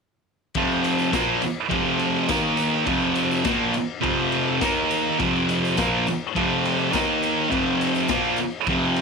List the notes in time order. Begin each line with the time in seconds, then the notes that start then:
0.54 F2 C3 F3, kick, ride, tambourine
0.72 tambourine
0.84 ride, tambourine
0.99 tambourine
1.12 A#2 F3 A#3, kick, snare, ride, tambourine
1.42 muted distorted electric guitar stroke, ride, tambourine
1.69 F2 C3 F3, kick, ride
1.99 ride, tambourine
2.16 tambourine
2.29 D#3 A#3 D#4, kick, snare, ride, tambourine
2.57 ride, tambourine
2.86 F2 C3 F3, kick, ride, tambourine
3.01 tambourine
3.15 ride, tambourine
3.31 tambourine
3.44 A#2 F3 A#3, kick, snare, ride, tambourine
3.73 muted distorted electric guitar stroke, ride, tambourine
4.01 F2 C3 F3, kick, ride
4.32 ride, tambourine
4.61 D#3 A#3 D#4, kick, snare, ride, tambourine
4.91 ride, tambourine
5.19 F2 C3 F3, kick, ride, tambourine
5.36 tambourine
5.49 ride, tambourine
5.65 tambourine
5.77 A#2 F3 A#3, kick, snare, ride, tambourine
6.07 muted distorted electric guitar stroke, ride, tambourine
6.35 F2 C3 F3, kick, ride
6.64 ride, tambourine
6.79 tambourine
6.92 D#3 A#3 D#4, kick, snare, ride, tambourine
7.23 ride, tambourine
7.50 F2 C3 F3, kick, ride
7.55 tambourine
7.81 ride, tambourine
7.95 tambourine
8.08 A#2 F3 A#3, kick, snare, ride, tambourine
8.37 muted distorted electric guitar stroke, ride, tambourine
8.50 tambourine
8.64 kick, ride, tambourine
8.69 F2 C3 F3
8.94 ride, tambourine